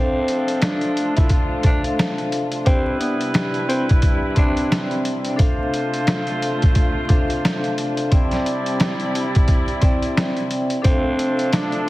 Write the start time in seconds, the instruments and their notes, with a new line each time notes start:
Already playing: string section C3 A3 D4 F4, horn section F3 D4 A4, tenor saxophone C4, vibraphone D4 A4 C5 E5 F5
0.28 closed hi-hat
0.48 closed hi-hat
0.62 tenor saxophone D4, snare, closed hi-hat
0.81 closed hi-hat
0.97 closed hi-hat
1.16 tenor saxophone E4, kick, closed hi-hat
1.29 kick, closed hi-hat
1.63 vibraphone D4 A4 C5 E5 F5, tenor saxophone D4, kick, closed hi-hat
1.84 closed hi-hat
1.99 snare, closed hi-hat
2.18 closed hi-hat
2.32 closed hi-hat
2.52 closed hi-hat
2.65 string section G3 E4, horn section G3 E4 B4, tenor saxophone C4, vibraphone D4 G4 D5 E5 G5, kick, closed hi-hat
3.00 tenor saxophone B3, closed hi-hat
3.21 closed hi-hat
3.34 snare, closed hi-hat
3.54 closed hi-hat
3.68 tenor saxophone C4, closed hi-hat
3.89 kick, closed hi-hat
4.02 kick, closed hi-hat
4.35 vibraphone C4 C5 D5 E5 G5, tenor saxophone D4, kick, closed hi-hat
4.57 closed hi-hat
4.72 snare, closed hi-hat
4.91 closed hi-hat
5.05 closed hi-hat
5.25 closed hi-hat
5.36 string section A3 D4 F4, horn section A3 F4 C5, vibraphone D4 A4 C5 E5 F5, kick, closed hi-hat
5.74 closed hi-hat
5.94 closed hi-hat
6.07 snare, closed hi-hat
6.27 closed hi-hat
6.42 closed hi-hat
6.62 kick, closed hi-hat
6.75 kick, closed hi-hat
7.08 vibraphone D4 A4 C5 E5 F5, kick, closed hi-hat
7.30 closed hi-hat
7.45 snare, closed hi-hat
7.64 closed hi-hat
7.78 closed hi-hat
7.97 closed hi-hat
8.11 horn section G3 E4 D5, string section G3 E4, vibraphone C4 C5 D5 E5 G5, kick, closed hi-hat
8.31 snare, closed hi-hat
8.46 closed hi-hat
8.66 closed hi-hat
8.80 snare, closed hi-hat
9.00 closed hi-hat
9.15 closed hi-hat
9.35 kick, closed hi-hat
9.48 kick, closed hi-hat
9.68 closed hi-hat
9.81 vibraphone C4 C5 D5 E5 G5, kick, closed hi-hat
10.03 closed hi-hat
10.17 snare, closed hi-hat
10.37 closed hi-hat
10.51 closed hi-hat
10.70 closed hi-hat
10.82 horn section F3 D4 A4, tenor saxophone C4, vibraphone D4 A4 C5 E5 F5, kick, closed hi-hat
10.86 string section C3 A3 D4 F4
11.19 closed hi-hat
11.39 closed hi-hat
11.53 tenor saxophone D4, snare, closed hi-hat
11.72 closed hi-hat